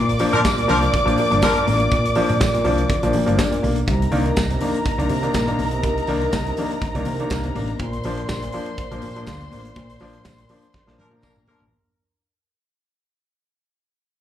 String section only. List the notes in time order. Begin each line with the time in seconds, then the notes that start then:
Already playing: D5 D6
3.87 A#4 A#5
7.79 C5 C6
10.99 A#4 A#5